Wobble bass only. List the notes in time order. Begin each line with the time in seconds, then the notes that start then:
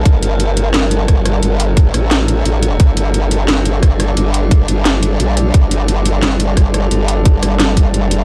0.05 G1
1.43 G1
1.94 A1
2.45 A1
2.80 G1
4.17 G1
4.68 G1
5.20 A#1
5.54 G1
6.91 G1
7.43 G1
8.03 F#1